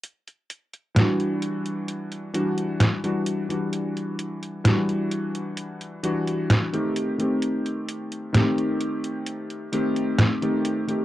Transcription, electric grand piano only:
X:1
M:4/4
L:1/16
Q:1/4=65
K:Clyd
V:1 name="Electric grand piano"
z4 [E,G,DF]6 [E,G,DF]3 [E,G,DF]2 [E,G,DF]- | [E,G,DF]4 [E,G,DF]6 [E,G,DF]3 [_E,A,CG]2 [E,A,CG]- | [_E,A,CG]4 [E,A,CG]6 [E,A,CG]3 [E,A,CG]2 [E,A,CG] |]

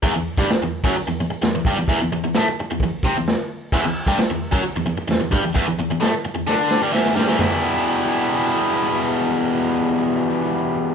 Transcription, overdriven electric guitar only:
X:1
M:4/4
L:1/16
Q:1/4=132
K:Em
V:1 name="Overdriven electric guitar" clef=bass
[E,,E,] E,,2 [G,,G,] z E,,2 [F,,F,] z E,, E,, z E,, E,, [G,,G,] E,, | [E,,E,] E,, E,, E,, [A,,A,] z2 E,, E,,2 [C,C] E,,2 z3 | [E,,E,] E,,2 [G,,G,] z E,,2 [F,,F,] z E,, E,, z E,, E,, [G,,G,] E,, | [E,,E,] E,, E,, E,, [A,,A,] z2 E,, [D,D]3 [G,,G,] [E,,E,]2 [G,,G,] [E,,E,] |
[E,,B,,E,G,B,E]16- | [E,,B,,E,G,B,E]16 |]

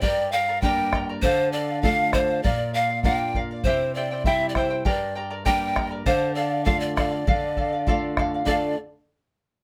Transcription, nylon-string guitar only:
X:1
M:2/4
L:1/8
Q:1/4=99
K:Dm
V:1 name="Nylon-string guitar"
G,,2 [G,B,D]2 | D,2 [A,DF]2 | B,,2 [B,DF]2 | C,2 [G,CE]2 |
G,,2 [G,B,D]2 | D,2 [A,DF]2 | D,2 [A,DF]2 | [D,A,DFA] z3 |]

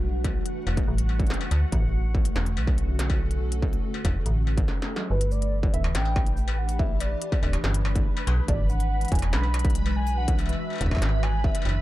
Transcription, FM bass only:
X:1
M:4/4
L:1/8
Q:1/4=142
K:Glyd
V:1 name="FM bass" clef=bass
B,,,2 z E,,, A,,,2 z D,, | A,,,3 E,,, B,,,4- | B,,,2 z E,,, A,,,2 z2 | G,,,3 D,,, A,,,4- |
A,,,2 z D,,, G,,,2 z B,,, | ^G,,,3 E,,, B,,,4- | B,,,2 z E,,, ^G,,,2 z F,,, |]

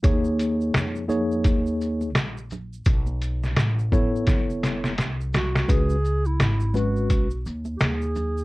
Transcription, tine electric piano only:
X:1
M:4/4
L:1/8
Q:"Swing 16ths" 1/4=85
K:C#dor
V:1 name="Tine electric piano"
[A,DGc]3 [A,DGc]3 z2 | z3 [B,E=Ac]3 z2 | [G,CFB] z2 [G,CFB] z4 |]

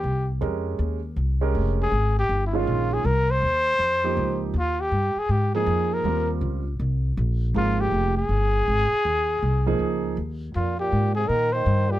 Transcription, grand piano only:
X:1
M:4/4
L:1/8
Q:"Swing" 1/4=160
K:Fm
V:1 name="Grand piano"
z2 [A,DGB]3 z2 [A,DGB]- | [A,DGB]2 z3 [E,A,DF]3 | z4 z [F,B,EG]3 | z4 z [F,B,EA]3 |
[G,CFB]3 z4 z | [F,A,B,E]3 z4 z | z3 [F,B,EA]3 z2 | z8 |]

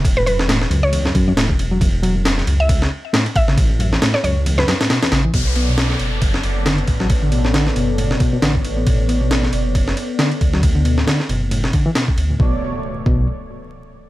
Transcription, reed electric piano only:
X:1
M:4/4
L:1/16
Q:"Swing 16ths" 1/4=136
K:Bm
V:1 name="Reed electric piano" clef=bass
z A,, F,, E,, A,, z F,, z E,, F,, F,, F,, A,, z2 F, | F,, z F, F,,4 z4 z A,, z2 C, | z A,, F,, E,, A,, z F,, z E,, F,, F,, A,, B,, E,, C, E, | B,, z B, B,,4 z4 z D, z2 F, |
z D, B,, A,, D, z B,, z A,, B,, B,, B,, D, z2 B, | B,, z B, B,,4 z4 z D, z2 F, | z D, B,, A,, D, z B,, z A,, B,, D, E, B,, z2 A,, | B,, z4 z B,,2 z8 |]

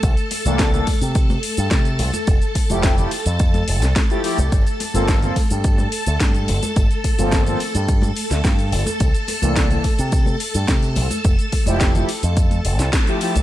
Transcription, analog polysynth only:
X:1
M:4/4
L:1/16
Q:1/4=107
K:Gdor
V:1 name="Analog polysynth"
z3 [E,B,DA]2 [E,B,DA] z8 z2 | z3 [F,A,EG]2 [F,A,EG] z6 z [F,A,EG] [F,A,EG] z | z3 [F,B,CA]2 [F,B,CA] z8 z2 | z3 [F,B,CA]2 [F,B,CA] z8 z2 |
z3 [E,B,DA]2 [E,B,DA] z8 z2 | z3 [F,A,EG]2 [F,A,EG] z6 z [F,A,EG] [F,A,EG] z |]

